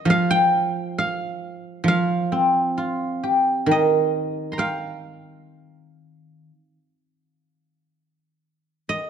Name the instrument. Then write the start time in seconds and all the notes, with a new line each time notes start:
guzheng
Already playing: D#5
0.05 F3
0.10 F5
0.30 G5
0.98 F5
1.84 F3
1.88 F5
2.32 C4
2.78 F4
3.23 G4
3.66 D#3
3.71 D#5
4.52 A#5 C6
4.58 F5 G5
8.89 D#5